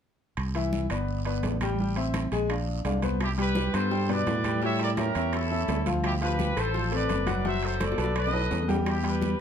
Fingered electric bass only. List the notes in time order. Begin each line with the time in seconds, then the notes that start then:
0.37 C2
0.90 G1
1.44 A1
2.32 A#1
2.85 C2
3.74 G2
4.27 A2
5.15 E2
5.68 D2
6.57 A1
7.10 F#1
7.98 B1
8.51 E2